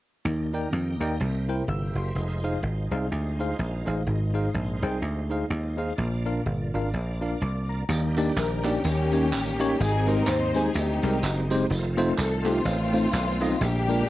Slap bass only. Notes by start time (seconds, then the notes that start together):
0.25 D#2
0.72 F2
1.00 D#2
1.20 C2
1.68 G1
1.95 F#1
2.15 F1
2.63 G#1
2.91 C2
3.12 D2
3.59 A#1
3.87 A1
4.07 G#1
4.54 A#1
4.82 C2
5.02 D2
5.50 D#2
5.98 A#1
6.46 G1
6.74 G#1
6.93 A#1
7.41 C2
7.89 D#2
8.36 A#1
8.85 D#2
9.33 A1
9.80 G#1
10.27 D#2
10.75 D2
11.03 C2
11.23 F#1
11.70 F1
12.18 C2
12.65 A1
13.13 B1
13.61 A#1